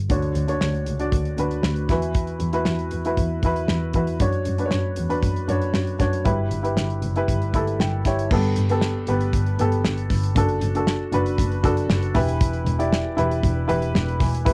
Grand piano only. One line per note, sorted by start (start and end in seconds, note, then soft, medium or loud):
0.10 0.83 D3 medium
0.10 0.43 D4 medium
0.10 0.43 F#4 medium
0.10 0.44 C#5 medium
0.48 0.92 D4 medium
0.48 0.92 F#4 medium
0.48 0.93 C#5 medium
0.99 1.32 D4 medium
0.99 1.33 F#4 medium
0.99 1.33 D5 medium
1.38 1.82 D4 medium
1.38 1.82 F#4 medium
1.38 1.83 B4 medium
1.90 2.63 E3 medium
1.90 2.44 E4 medium
1.90 2.45 F#4 medium
1.90 2.45 B4 medium
2.53 2.97 E4 medium
2.53 2.97 F#4 medium
2.53 2.98 B4 medium
3.05 3.38 E4 medium
3.05 3.38 F#4 medium
3.05 3.39 B4 medium
3.45 3.88 E4 medium
3.45 3.88 F#4 medium
3.45 3.88 B4 medium
3.95 4.17 E4 medium
3.95 4.17 F#4 medium
3.95 4.17 B4 medium
4.20 4.53 D4 medium
4.20 4.53 F#4 medium
4.20 4.54 C#5 medium
4.58 5.02 D4 medium
4.58 5.03 F#4 medium
4.58 4.65 B4 medium
4.66 5.06 C#5 medium
5.09 5.43 D4 medium
5.09 5.43 F#4 medium
5.09 5.43 B4 medium
5.48 5.92 D4 medium
5.48 5.92 F#4 medium
5.48 5.93 C#5 medium
5.99 6.21 D4 medium
5.99 6.22 F#4 medium
5.99 6.22 C#5 medium
6.25 6.98 G2 medium
6.25 6.58 E4 medium
6.25 6.58 G4 medium
6.25 6.59 B4 medium
6.63 7.07 E4 medium
6.63 7.08 G4 medium
6.63 7.08 B4 medium
7.16 7.49 E4 medium
7.16 7.49 G4 medium
7.16 7.49 B4 medium
7.54 7.98 E4 medium
7.54 7.98 G4 medium
7.54 7.99 A4 medium
7.54 7.78 B5 medium
7.80 8.04 G5 medium
8.06 8.27 E4 medium
8.06 8.28 G4 medium
8.06 8.28 C#5 medium
8.06 8.30 G5 medium
8.32 9.05 G2 medium
8.32 8.64 B3 medium
8.32 8.64 G4 medium
8.32 8.65 A4 medium
8.70 9.02 B3 medium
8.70 9.03 G4 medium
8.70 9.03 A4 medium
9.08 9.52 B3 medium
9.08 9.52 G4 medium
9.08 9.52 B4 medium
9.60 10.25 B3 medium
9.60 10.25 G4 medium
9.60 10.26 A4 medium
10.36 10.69 D4 medium
10.36 10.69 F#4 medium
10.36 10.69 A4 medium
10.75 11.07 D4 medium
10.75 11.08 F#4 medium
10.75 11.08 A4 medium
11.12 11.56 D4 medium
11.12 11.57 F#4 medium
11.12 11.57 B4 medium
11.63 12.15 D4 medium
11.63 12.15 F#4 medium
11.63 12.16 A4 loud
12.14 12.88 E3 medium
12.14 12.69 E4 medium
12.14 12.70 G4 medium
12.14 12.70 B4 medium
12.79 13.12 E4 medium
12.79 13.12 G4 medium
12.79 13.12 D5 medium
13.17 13.61 E4 medium
13.17 13.61 G4 medium
13.17 13.62 B4 medium
13.68 14.34 E4 medium
13.68 14.34 G4 medium
13.68 14.34 B4 loud
14.20 14.53 E3 medium
14.45 14.53 E4 medium
14.45 14.53 G4 medium
14.45 14.53 B4 medium